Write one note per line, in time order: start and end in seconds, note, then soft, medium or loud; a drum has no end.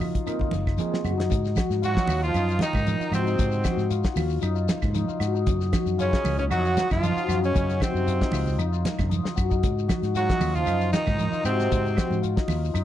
0.00 0.26 D#4 medium
0.00 0.39 F4 medium
0.00 open hi-hat medium
0.00 high conga medium
0.00 low conga medium
0.00 claves medium
0.00 shekere soft
0.15 kick medium
0.15 closed hi-hat medium
0.26 0.52 A#3 medium
0.26 0.52 C4 medium
0.26 0.78 D#4 medium
0.26 0.52 F4 medium
0.26 0.52 A#4 medium
0.26 closed hi-hat medium
0.26 claves medium
0.26 shekere medium
0.39 0.92 F4 medium
0.39 kick medium
0.39 low conga medium
0.51 0.77 F#1 medium
0.51 closed hi-hat soft
0.51 high conga medium
0.51 shekere soft
0.67 kick medium
0.67 snare soft
0.67 claves medium
0.78 1.11 A#3 medium
0.78 1.11 C4 medium
0.78 1.17 D#4 medium
0.78 1.11 F4 medium
0.78 1.11 G#4 loud
0.78 closed hi-hat medium
0.78 high conga medium
0.78 shekere medium
0.92 1.10 F4 medium
0.92 snare medium
1.04 1.29 F#2 medium
1.04 1.56 F#4 medium
1.04 closed hi-hat soft
1.04 low conga medium
1.04 claves medium
1.04 shekere soft
1.18 1.96 D#4 medium
1.18 snare medium
1.18 closed hi-hat soft
1.30 1.56 G#2 medium
1.30 kick medium
1.30 closed hi-hat medium
1.30 low conga medium
1.30 shekere medium
1.45 snare soft
1.45 shekere soft
1.56 1.88 F#4 medium
1.56 kick medium
1.56 snare medium
1.56 closed hi-hat medium
1.56 high conga medium
1.56 claves medium
1.56 shekere medium
1.70 1.94 G#2 medium
1.70 snare soft
1.70 closed hi-hat soft
1.70 shekere soft
1.82 2.21 F#3 medium
1.82 2.09 F4 medium
1.82 2.21 F#4 loud
1.82 closed hi-hat medium
1.82 shekere medium
1.87 2.22 F#4 medium
1.95 2.35 D#4 medium
1.95 kick medium
1.95 snare medium
1.95 closed hi-hat soft
1.95 high conga medium
1.95 shekere soft
2.07 2.33 D#2 loud
2.07 3.00 F4 medium
2.07 open hi-hat medium
2.07 high conga medium
2.07 claves medium
2.07 shekere medium
2.22 2.59 F3 medium
2.22 2.58 F4 loud
2.22 2.60 F4 medium
2.22 closed hi-hat soft
2.22 shekere soft
2.34 2.59 F#2 medium
2.34 2.86 D#4 medium
2.34 closed hi-hat medium
2.34 claves medium
2.34 shekere medium
2.49 closed hi-hat soft
2.49 shekere soft
2.59 3.10 D#3 medium
2.59 3.10 D#4 medium
2.59 snare medium
2.59 closed hi-hat soft
2.59 high conga loud
2.59 shekere medium
2.63 3.10 D#4 medium
2.73 2.99 G#2 medium
2.73 kick medium
2.73 low conga medium
2.73 claves medium
2.73 shekere soft
2.86 3.25 D#4 medium
2.86 closed hi-hat medium
2.86 high conga medium
2.86 shekere medium
3.00 3.18 F4 medium
3.00 muted fingered electric bass stroke soft
3.00 closed hi-hat soft
3.00 shekere soft
3.12 3.37 G#2 loud
3.12 3.87 C3 medium
3.12 3.87 C4 medium
3.12 3.88 C4 medium
3.12 3.64 F#4 medium
3.12 snare soft
3.12 closed hi-hat medium
3.12 high conga medium
3.12 claves medium
3.12 shekere medium
3.26 4.42 D#4 medium
3.26 closed hi-hat soft
3.26 shekere soft
3.39 3.63 G#2 loud
3.39 kick medium
3.39 closed hi-hat medium
3.39 low conga medium
3.39 shekere medium
3.52 closed hi-hat soft
3.52 shekere soft
3.64 3.96 F#4 medium
3.64 kick medium
3.64 snare medium
3.64 closed hi-hat medium
3.64 high conga medium
3.64 claves medium
3.64 shekere medium
3.77 4.02 G#2 medium
3.77 snare soft
3.77 shekere soft
3.90 4.10 F4 medium
3.90 closed hi-hat medium
3.90 shekere medium
4.04 4.23 F#4 medium
4.04 kick medium
4.04 snare medium
4.04 closed hi-hat soft
4.04 shekere soft
4.16 4.41 D#2 medium
4.16 4.54 F4 medium
4.16 open hi-hat medium
4.16 high conga medium
4.16 claves medium
4.16 shekere medium
4.30 shekere soft
4.42 4.67 F#2 medium
4.42 4.94 D#4 medium
4.42 closed hi-hat medium
4.42 claves medium
4.42 shekere medium
4.55 5.08 F4 medium
4.55 shekere soft
4.68 snare medium
4.68 closed hi-hat medium
4.68 high conga loud
4.68 shekere medium
4.82 5.07 G#2 medium
4.82 kick medium
4.82 snare soft
4.82 low conga medium
4.82 claves medium
4.82 shekere soft
4.95 5.34 D#4 medium
4.95 closed hi-hat medium
4.95 high conga medium
4.95 shekere medium
5.08 5.26 F4 medium
5.08 muted fingered electric bass stroke soft
5.08 shekere soft
5.20 5.45 G#2 loud
5.20 5.72 F#4 medium
5.20 snare soft
5.20 closed hi-hat medium
5.20 claves medium
5.20 shekere medium
5.34 6.12 D#4 medium
5.34 shekere soft
5.46 5.71 F#2 loud
5.46 kick medium
5.46 closed hi-hat medium
5.46 low conga medium
5.46 shekere medium
5.61 snare soft
5.61 shekere soft
5.72 6.04 F#4 medium
5.72 kick medium
5.72 snare medium
5.72 closed hi-hat medium
5.72 high conga medium
5.72 claves medium
5.72 shekere medium
5.86 6.11 F#2 medium
5.86 closed hi-hat soft
5.86 shekere soft
5.98 6.35 C#3 medium
5.98 6.36 C#4 medium
5.98 6.37 C#4 medium
5.98 6.64 F4 medium
5.98 closed hi-hat medium
5.98 shekere medium
6.13 6.51 D#4 medium
6.13 kick medium
6.13 snare medium
6.13 closed hi-hat soft
6.13 shekere soft
6.24 6.49 C#2 medium
6.24 open hi-hat medium
6.24 high conga medium
6.24 claves medium
6.24 shekere medium
6.38 6.43 C#3 medium
6.38 6.44 C#4 medium
6.38 6.45 C#4 medium
6.38 closed hi-hat soft
6.38 low conga medium
6.38 shekere soft
6.49 6.75 F2 loud
6.49 6.87 F#3 loud
6.49 7.02 D#4 medium
6.49 6.88 F#4 loud
6.49 6.89 F#4 medium
6.49 closed hi-hat medium
6.49 claves medium
6.49 shekere medium
6.65 7.22 F4 medium
6.65 closed hi-hat soft
6.65 shekere soft
6.77 snare medium
6.77 closed hi-hat medium
6.77 high conga medium
6.77 shekere medium
6.90 7.15 F#2 medium
6.90 7.39 F3 medium
6.90 7.39 F4 medium
6.90 7.40 F4 loud
6.90 kick medium
6.90 snare soft
6.90 low conga medium
6.90 claves medium
6.90 shekere soft
7.03 7.42 D#4 medium
7.03 closed hi-hat medium
7.03 high conga medium
7.03 shekere medium
7.16 7.29 F#4 medium
7.16 muted fingered electric bass stroke soft
7.16 closed hi-hat soft
7.16 shekere soft
7.28 7.53 F#2 medium
7.28 7.80 F#4 medium
7.28 snare soft
7.28 closed hi-hat medium
7.28 high conga medium
7.28 claves medium
7.28 shekere medium
7.40 7.77 C#3 medium
7.40 8.21 D#4 medium
7.40 closed hi-hat soft
7.40 shekere soft
7.44 7.79 C#4 medium
7.44 7.80 C#4 medium
7.55 7.80 F#2 medium
7.55 kick loud
7.55 closed hi-hat medium
7.55 low conga medium
7.55 shekere medium
7.70 snare soft
7.70 closed hi-hat soft
7.70 shekere soft
7.80 8.56 C3 medium
7.80 8.56 C4 medium
7.80 8.13 F#4 medium
7.80 kick medium
7.80 snare medium
7.80 closed hi-hat medium
7.80 high conga medium
7.80 claves medium
7.80 shekere medium
7.94 8.19 F#2 medium
7.94 shekere soft
8.07 8.33 F4 medium
8.07 closed hi-hat medium
8.07 shekere medium
8.21 8.58 D#4 medium
8.21 kick medium
8.21 snare medium
8.21 closed hi-hat soft
8.21 shekere soft
8.32 8.57 C#2 medium
8.32 8.72 F4 medium
8.32 open hi-hat medium
8.32 high conga loud
8.32 claves medium
8.32 shekere medium
8.46 low conga medium
8.46 shekere soft
8.58 8.83 F2 medium
8.58 9.09 D#4 medium
8.58 closed hi-hat medium
8.58 claves medium
8.58 shekere medium
8.72 9.23 F4 medium
8.72 shekere soft
8.85 snare medium
8.85 closed hi-hat medium
8.85 high conga loud
8.85 shekere medium
8.99 9.23 F#2 medium
8.99 kick medium
8.99 snare soft
8.99 low conga medium
8.99 claves medium
8.99 shekere soft
9.09 9.49 D#4 medium
9.09 closed hi-hat medium
9.09 high conga medium
9.09 shekere medium
9.23 9.42 F4 medium
9.23 muted fingered electric bass stroke soft
9.23 snare medium
9.23 shekere soft
9.36 9.62 F#2 medium
9.36 9.88 F#4 medium
9.36 kick medium
9.36 closed hi-hat medium
9.36 claves medium
9.36 shekere medium
9.49 10.28 D#4 medium
9.49 kick medium
9.49 shekere soft
9.63 9.88 G#2 medium
9.63 kick medium
9.63 closed hi-hat medium
9.63 low conga medium
9.63 shekere medium
9.78 shekere soft
9.88 10.21 F#4 medium
9.88 kick medium
9.88 snare medium
9.88 closed hi-hat medium
9.88 high conga medium
9.88 claves medium
9.88 shekere medium
10.03 10.27 G#2 medium
10.03 snare soft
10.03 closed hi-hat soft
10.03 shekere soft
10.15 10.52 F#3 medium
10.15 10.41 F4 medium
10.15 10.57 F#4 loud
10.15 10.56 F#4 medium
10.15 closed hi-hat medium
10.15 shekere medium
10.29 10.66 D#4 medium
10.29 kick medium
10.29 snare medium
10.29 closed hi-hat soft
10.29 high conga medium
10.29 shekere soft
10.40 10.65 D#2 loud
10.40 10.80 F4 medium
10.40 open hi-hat medium
10.40 high conga medium
10.40 claves medium
10.40 shekere medium
10.54 10.93 F3 medium
10.54 10.92 F4 medium
10.54 10.92 F4 loud
10.54 closed hi-hat soft
10.54 low conga medium
10.54 shekere soft
10.66 10.92 F#2 loud
10.66 11.19 D#4 medium
10.66 closed hi-hat medium
10.66 claves medium
10.66 shekere medium
10.81 11.32 F4 medium
10.81 closed hi-hat soft
10.81 shekere soft
10.93 11.42 D#3 medium
10.93 11.41 D#4 medium
10.93 snare medium
10.93 closed hi-hat medium
10.93 high conga loud
10.93 shekere medium
11.06 11.32 G#2 medium
11.06 kick medium
11.06 snare soft
11.06 low conga medium
11.06 claves medium
11.06 shekere soft
11.19 11.58 D#4 medium
11.19 closed hi-hat medium
11.19 high conga medium
11.19 shekere medium
11.33 11.51 F4 medium
11.33 muted fingered electric bass stroke soft
11.33 closed hi-hat soft
11.33 shekere soft
11.44 11.69 G#2 medium
11.44 12.19 C3 medium
11.44 12.19 C4 medium
11.44 11.96 F#4 medium
11.44 closed hi-hat medium
11.44 claves medium
11.44 shekere medium
11.58 12.36 D#4 medium
11.58 snare soft
11.58 closed hi-hat soft
11.58 shekere soft
11.72 11.96 G#2 medium
11.72 kick loud
11.72 closed hi-hat medium
11.72 low conga medium
11.72 shekere medium
11.86 closed hi-hat soft
11.86 shekere soft
11.96 12.28 F#4 medium
11.96 kick medium
11.96 snare medium
11.96 closed hi-hat medium
11.96 high conga medium
11.96 claves medium
11.96 shekere medium
12.10 12.35 G#2 medium
12.10 high conga medium
12.10 shekere soft
12.22 12.48 F4 medium
12.22 closed hi-hat medium
12.22 shekere medium
12.36 12.73 D#4 medium
12.36 kick medium
12.36 snare medium
12.36 closed hi-hat soft
12.36 shekere soft
12.48 12.73 D#2 medium
12.48 12.84 F4 medium
12.48 open hi-hat medium
12.48 high conga medium
12.48 claves medium
12.48 shekere medium
12.65 shekere soft
12.74 12.84 F#2 loud
12.74 12.84 D#4 medium
12.74 closed hi-hat medium
12.74 claves medium
12.74 shekere medium